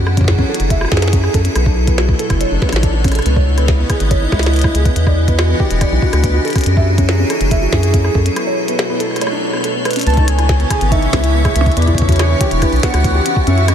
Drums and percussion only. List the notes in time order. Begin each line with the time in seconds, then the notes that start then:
0.07 cross-stick
0.17 kick, closed hi-hat
0.21 kick
0.24 kick, snare
0.28 kick
0.31 kick
0.35 kick
0.39 kick
0.54 closed hi-hat
0.60 closed hi-hat
0.70 kick, closed hi-hat
0.81 cross-stick
0.85 cross-stick
0.88 kick, cross-stick, snare
0.97 snare
1.02 snare, closed hi-hat
1.08 snare
1.13 kick, closed hi-hat
1.24 cross-stick
1.34 kick, closed hi-hat
1.45 closed hi-hat
1.56 cross-stick, closed hi-hat
1.66 kick
1.87 kick, closed hi-hat
1.98 cross-stick, snare
2.09 kick
2.19 closed hi-hat
2.30 kick, cross-stick, closed hi-hat
2.41 closed hi-hat
2.62 kick, snare
2.69 cross-stick, snare, closed hi-hat
2.76 snare
2.83 kick, closed hi-hat
3.04 kick, cross-stick, closed hi-hat
3.08 cross-stick, closed hi-hat
3.12 closed hi-hat
3.15 cross-stick, closed hi-hat
3.19 closed hi-hat
3.22 closed hi-hat
3.26 closed hi-hat
3.36 kick
3.58 cross-stick, closed hi-hat
3.68 kick, snare
3.90 kick, cross-stick, closed hi-hat
4.00 closed hi-hat
4.11 kick, closed hi-hat
4.32 kick, cross-stick, snare
4.39 snare, closed hi-hat
4.46 snare
4.54 closed hi-hat
4.56 closed hi-hat
4.59 closed hi-hat
4.62 kick, cross-stick, closed hi-hat
4.75 closed hi-hat
4.85 kick, closed hi-hat
4.96 closed hi-hat
5.07 kick, cross-stick
5.28 kick, closed hi-hat
5.39 cross-stick, snare
5.60 kick
5.71 closed hi-hat
5.81 kick, cross-stick, closed hi-hat
6.02 kick
6.13 cross-stick, closed hi-hat
6.24 kick, closed hi-hat
6.45 closed hi-hat
6.48 closed hi-hat
6.50 closed hi-hat
6.53 kick, cross-stick, closed hi-hat
6.56 closed hi-hat
6.58 closed hi-hat
6.61 closed hi-hat
6.64 closed hi-hat
6.66 closed hi-hat
6.77 kick
6.98 kick, closed hi-hat
7.09 snare
7.30 cross-stick, closed hi-hat
7.41 closed hi-hat
7.51 kick, closed hi-hat
7.73 kick, snare
7.83 closed hi-hat
7.94 kick, closed hi-hat
8.04 cross-stick
8.15 kick
8.26 closed hi-hat
8.36 cross-stick, closed hi-hat
8.68 closed hi-hat
8.79 cross-stick, snare, closed hi-hat
9.00 closed hi-hat
9.11 cross-stick
9.16 cross-stick, closed hi-hat
9.21 cross-stick, closed hi-hat
9.27 cross-stick
9.53 cross-stick
9.57 cross-stick
9.60 cross-stick
9.64 cross-stick, closed hi-hat
9.68 cross-stick
9.71 cross-stick
9.85 cross-stick, closed hi-hat
9.91 closed hi-hat
9.93 closed hi-hat
9.96 closed hi-hat
9.99 closed hi-hat
10.01 closed hi-hat
10.03 closed hi-hat
10.07 closed hi-hat
10.09 closed hi-hat
10.14 closed hi-hat
10.17 kick, closed hi-hat
10.28 closed hi-hat
10.39 cross-stick, closed hi-hat
10.49 kick, snare
10.60 closed hi-hat
10.70 kick, cross-stick, closed hi-hat
10.81 closed hi-hat
10.92 kick, closed hi-hat
11.02 closed hi-hat
11.13 kick, cross-stick, snare, closed hi-hat, percussion blips
11.24 closed hi-hat
11.45 kick, cross-stick, closed hi-hat
11.56 closed hi-hat
11.61 percussion blips
11.66 kick, closed hi-hat
11.72 closed hi-hat
11.77 closed hi-hat
11.82 closed hi-hat
11.88 kick, closed hi-hat
11.95 kick, closed hi-hat
12.02 kick
12.09 kick, closed hi-hat
12.12 closed hi-hat
12.16 cross-stick, snare, closed hi-hat
12.19 closed hi-hat
12.41 kick, closed hi-hat
12.51 closed hi-hat
12.62 kick, cross-stick, closed hi-hat
12.73 closed hi-hat
12.76 closed hi-hat
12.80 snare, closed hi-hat
12.83 kick, closed hi-hat
12.87 closed hi-hat
12.90 cross-stick, closed hi-hat
12.94 closed hi-hat
13.04 kick, closed hi-hat
13.26 closed hi-hat
13.36 kick
13.47 closed hi-hat
13.58 closed hi-hat
13.68 cross-stick, closed hi-hat